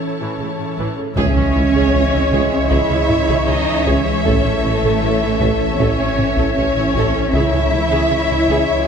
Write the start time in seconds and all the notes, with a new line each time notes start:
Already playing: E3 C#4 E4 A4 C#5 A5
0.21 A2 E3
0.39 A1 A2 C#3
0.58 A2 C#3
0.78 A1 A2 E3
0.98 A2 C#3
1.16 C#2 E3 G#3 C#4 G#4 C#5 E5, taiko, impact
1.35 C#2 C#4
1.55 C#2 E4
1.74 C#2 G#4
1.93 C#2 C#4
2.13 C#2 E4
2.32 C#2 G#4, taiko
2.70 C#2 E4 G#4 E5, taiko
2.90 C#2 C#4
3.09 taiko low-mid
3.28 C#2 G#4, taiko
3.48 C#2 C#4 D#4 D#5
3.67 C#2 E4
3.86 C#2 C#4 G#4 C#5, taiko
4.06 C#2 G#3 C#4 G#4
4.23 A1 A3 E4 A4, taiko
4.44 A1 C#4
4.64 A1 E4
4.83 A1 A4
5.02 A1 C#4
5.21 A1 E4
5.41 A1 A4, taiko
5.78 A1 C#4 A4 C#5, taiko
5.99 A1 C#4
6.18 taiko low-mid
6.37 A1 A4, taiko
6.55 A1 C#4 C#5
6.77 A1 E4
6.94 A1 A4, taiko
7.15 A1 C#4
7.32 C#2 E3 C#4 E4 G#4 C#5 E5, taiko
7.53 C#2 C#4
7.73 C#2 E4
7.91 C#2 G#4
8.09 C#2 G#3 C#4
8.30 C#2 E4
8.48 C#2 G#4, taiko